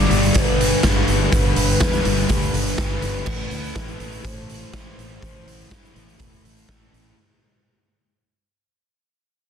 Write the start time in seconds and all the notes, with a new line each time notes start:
Already playing: G2 D3 D5
0.10 G1 D3 G3, closed hi-hat
0.23 closed hi-hat
0.34 G1 G2 D3 G3 B4, kick, closed hi-hat
0.61 closed hi-hat
0.83 G1 G2 D3 G3, kick, snare, closed hi-hat
1.08 G1, closed hi-hat
1.31 G1 G2 D3 G3 B4, kick, closed hi-hat
1.56 G1, closed hi-hat
1.68 closed hi-hat
1.80 E2 G2 D3 G3, kick, snare, closed hi-hat
1.93 snare, closed hi-hat
2.04 G1 D3 G3, closed hi-hat
2.17 closed hi-hat
2.29 D2 G2 D3 G3 B4, kick, closed hi-hat
2.42 closed hi-hat
2.54 G1, closed hi-hat
2.66 closed hi-hat
2.78 G1 G2 D3 G3, kick, snare, closed hi-hat
3.02 G1, closed hi-hat
3.26 A1 A2 E3 A3, kick, crash
3.51 D2, closed hi-hat
3.64 closed hi-hat
3.75 A1 A2 E3 A3, kick, snare, closed hi-hat
3.88 closed hi-hat
3.99 A1 E3 A3, closed hi-hat
4.12 closed hi-hat
4.23 A1 A2 E3 A3 C5, kick, closed hi-hat
4.49 closed hi-hat
4.72 A1 A2 E3 A3, kick, snare, closed hi-hat
4.98 A1, closed hi-hat
5.21 A1 A2 E3 A3, kick, closed hi-hat
5.46 A1, closed hi-hat
5.59 closed hi-hat
5.69 G2 A2 E3 A3, kick, snare, closed hi-hat
5.85 snare, closed hi-hat
5.93 A1 E3 A3, closed hi-hat
6.08 closed hi-hat
6.18 E1 A2 E3 A3, kick, closed hi-hat
6.33 closed hi-hat
6.45 A1, closed hi-hat
6.56 closed hi-hat
6.67 A1 A2 E3 A3, kick, snare, closed hi-hat
6.93 A1, closed hi-hat